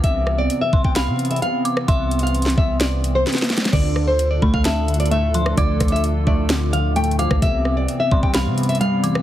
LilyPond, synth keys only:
\new Staff \with { instrumentName = "Synth keys" } { \clef bass \time 4/4 \key c \major \tempo 4 = 130 r1 | r1 | d8 d4 a8 d8 d8 a8 f8 | d8 d4 a8 d8 d8 a8 f8 |
c8 c4 g8 c8 c8 g8 e8 | }